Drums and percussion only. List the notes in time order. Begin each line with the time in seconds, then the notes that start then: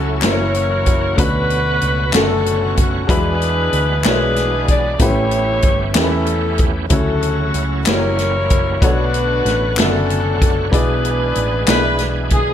0.22 snare, clap, closed hi-hat
0.54 closed hi-hat
0.86 kick, closed hi-hat
1.18 kick, closed hi-hat
1.50 closed hi-hat
1.81 closed hi-hat
2.13 snare, clap, closed hi-hat
2.46 closed hi-hat
2.77 kick, closed hi-hat
3.09 kick, closed hi-hat
3.42 closed hi-hat
3.73 closed hi-hat
4.04 snare, clap, closed hi-hat
4.36 snare, closed hi-hat
4.68 kick, closed hi-hat
4.99 kick, closed hi-hat
5.31 closed hi-hat
5.62 kick, closed hi-hat
5.94 snare, clap, closed hi-hat
6.26 closed hi-hat
6.58 kick, closed hi-hat
6.90 kick, closed hi-hat
7.22 closed hi-hat
7.54 closed hi-hat
7.86 snare, clap, closed hi-hat
8.19 snare, closed hi-hat
8.50 kick, closed hi-hat
8.82 kick, closed hi-hat
9.14 closed hi-hat
9.46 snare, closed hi-hat
9.77 snare, clap, closed hi-hat
10.10 closed hi-hat
10.42 kick, closed hi-hat
10.73 kick, closed hi-hat
11.05 closed hi-hat
11.35 closed hi-hat
11.67 snare, clap, closed hi-hat
11.99 snare, closed hi-hat
12.30 kick, closed hi-hat